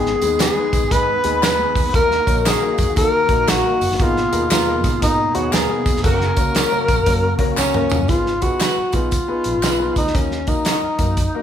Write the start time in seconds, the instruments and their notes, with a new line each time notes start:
Already playing: fingered electric bass G#1, tonewheel organ D#3 B3 G#4, tenor saxophone G#4, vibraphone G#5
0.06 snare
0.21 fingered electric bass D#2, grand piano G#3 B3 D#4 G#4, closed hi-hat, tambourine
0.39 clean electric guitar B3 D#4 G#4, tenor saxophone G#4, vibraphone G#5, snare, clap, closed hi-hat, tambourine
0.56 grand piano G#3 B3 D#4 B4
0.73 fingered electric bass B1, kick, closed hi-hat, tambourine
0.83 fingered electric bass G#1
0.90 fingered electric bass G#2, grand piano G#3 B3 D#4 G#4, tenor saxophone B4, vibraphone B5, kick, closed hi-hat, tambourine
1.24 fingered electric bass D#2, grand piano G#3 B3 D#4 G#4, closed hi-hat, tambourine
1.41 clean electric guitar B3 D#4 G#4, tenor saxophone B4, vibraphone B5, snare, clap, closed hi-hat, tambourine
1.58 grand piano G#3 B3 D#4 G#4
1.75 fingered electric bass D#2, kick, open hi-hat, tambourine
1.93 fingered electric bass D#2, grand piano A#3 D#4 F#4 A#4, tonewheel organ A#3 F#4, tenor saxophone A#4, vibraphone A#5, kick, closed hi-hat, tambourine
2.11 snare
2.26 fingered electric bass A#1, grand piano A#3 D#4 F#4 C#5, kick, closed hi-hat, tambourine
2.45 clean electric guitar D#4 F#4 A#4, tenor saxophone G#4, vibraphone G#5, snare, clap, closed hi-hat, tambourine
2.60 grand piano A#3 D#4 F#4 A#4
2.78 fingered electric bass F#2, kick, closed hi-hat, tambourine
2.88 fingered electric bass D#2
2.95 fingered electric bass D#3, grand piano A#3 D#4 F#4 A#4, tenor saxophone A#4, vibraphone A#5, kick, closed hi-hat, tambourine
3.29 fingered electric bass A#1, grand piano A#3 D#4 F#4 A#4, kick, closed hi-hat
3.48 fingered electric bass A#1, clean electric guitar D#4 F#4 A#4, tenor saxophone F#4, vibraphone F#5, snare, clap, closed hi-hat, tambourine
3.64 grand piano A#3 D#4 F#4 A#4
3.81 fingered electric bass F#1, open hi-hat, tambourine
3.91 fingered electric bass G1, snare
3.96 fingered electric bass G#1, grand piano B3 D#4 A#4, tenor saxophone F#4, vibraphone F#5, kick, tambourine
4.00 tonewheel organ B2 G#4, tenor saxophone F4, grand piano G#4, vibraphone F5, closed hi-hat
4.17 snare
4.32 fingered electric bass D#2, grand piano B3 D#4 G#4 A#4, closed hi-hat, tambourine
4.50 fingered electric bass D#2, clean electric guitar B3 D#4 A#4, tenor saxophone F4, vibraphone F5, snare, clap, closed hi-hat, tambourine
4.66 grand piano B3 D#4 G#4 A#4
4.84 fingered electric bass G#2, kick, closed hi-hat, tambourine
5.01 fingered electric bass G#2, grand piano B3 D#4 G#4 A#4, tenor saxophone D#4, vibraphone D#5, kick, closed hi-hat, tambourine
5.34 fingered electric bass D#2, grand piano B3 D#4 G#4 C#5, tenor saxophone F#4, vibraphone F#5, closed hi-hat
5.52 fingered electric bass D#2, clean electric guitar B3 D#4 A#4, tenor saxophone G#4, vibraphone G#5, snare, clap, closed hi-hat, tambourine
5.69 grand piano B3 D#4 G#4 A#4
5.86 fingered electric bass E1, kick, closed hi-hat, tambourine
5.96 fingered electric bass F1, snare
6.03 fingered electric bass F#1, horn section C#3 F#3 A#3 F#4, tonewheel organ C#3 A#3 F#4, grand piano A#3 C#4 F#4 A#4, tenor saxophone A#4, vibraphone A#5, kick, closed hi-hat, tambourine
6.21 snare
6.37 fingered electric bass C#2, grand piano A#3 C#4 F#4 A#4, kick, closed hi-hat, tambourine
6.55 clean electric guitar C#4 F#4 A#4, snare, clap, closed hi-hat, tambourine
6.72 grand piano A#3 C#4 F#4 A#4
6.88 fingered electric bass A#1, kick, closed hi-hat, tambourine
6.97 fingered electric bass F#1
7.06 fingered electric bass F#2, grand piano A#3 C#4 F#4 A#4, kick, closed hi-hat, tambourine
7.39 fingered electric bass C#2, grand piano A#3 C#4 F#4 A#4, kick, closed hi-hat
7.57 fingered electric bass C#2, tenor saxophone C#4, clean electric guitar C#4 F#4 A#4, snare, clap, tambourine
7.74 grand piano A#3 C#4 F#4 A#4, mid tom
7.90 floor tom, tambourine
8.00 fingered electric bass F#2
8.08 fingered electric bass G#1, grand piano B3 D#4 G#4 B4, tenor saxophone F4, kick, closed hi-hat, tambourine
8.26 snare
8.41 grand piano B3 D#4 G#4 B4, tenor saxophone F#4, kick, closed hi-hat, tambourine
8.60 clean electric guitar D#4 G#4 B4, snare, clap, closed hi-hat, tambourine
8.78 muted fingered electric bass stroke
8.92 fingered electric bass B1, grand piano B3 D#4 G#4 B4, tenor saxophone F4, kick, closed hi-hat, tambourine
9.11 kick, closed hi-hat, tambourine
9.28 grand piano B3 D#4 G#4 B4
9.44 fingered electric bass A#1, closed hi-hat, tambourine
9.55 fingered electric bass G#1
9.63 fingered electric bass B1, clean electric guitar D#4 G#4 B4, snare, clap, closed hi-hat, tambourine
9.79 grand piano B3 D#4 G#4 B4
9.96 fingered electric bass D2, tenor saxophone D#4, kick, closed hi-hat, tambourine
10.07 snare
10.14 fingered electric bass D#2, grand piano A#3 D#4 F#4 A#4, tenor saxophone C#4, kick, closed hi-hat, tambourine
10.31 snare
10.47 grand piano A#3 D#4 F#4 A#4, tenor saxophone D#4, kick, closed hi-hat, tambourine
10.65 clean electric guitar D#4 F#4 A#4, snare, clap, closed hi-hat, tambourine
10.83 muted fingered electric bass stroke
10.98 fingered electric bass F#2, grand piano A#3 D#4 F#4 A#4, kick, closed hi-hat, tambourine
11.17 kick, closed hi-hat, tambourine
11.35 grand piano A#3 D#4 F#4 A#4